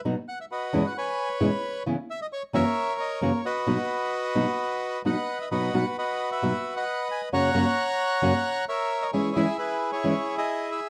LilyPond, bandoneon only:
\new Staff \with { instrumentName = "Bandoneon" } { \time 4/4 \key b \major \tempo 4 = 132 << { r8 fis''16 e''16 dis''8. fis''16 gis''8. r4 r16 | r8 e''16 dis''16 cis''8 e''4 dis''8 cis''8 dis''8~ | dis''2. fis''8. e''16 | dis''8 fis''8 dis''8. e''4 fis''8. gis''8 |
ais''2. e''8. dis''16 | cis''8 e''8 b'8. cis''4 dis''8. e''8 | } \\ { r4 <fis' b'>4 <b' cis''>2 | r4. <ais' cis''>2 <fis' b'>8~ | <fis' b'>2. <b' dis''>4 | <fis' b'>4 <fis' b'>8. b'4 <b' dis''>4~ <b' dis''>16 |
<cis'' fis''>2. <ais' cis''>4 | <e' gis'>4 <e' gis'>8. <e' gis'>4 gis'4~ gis'16 | } >> }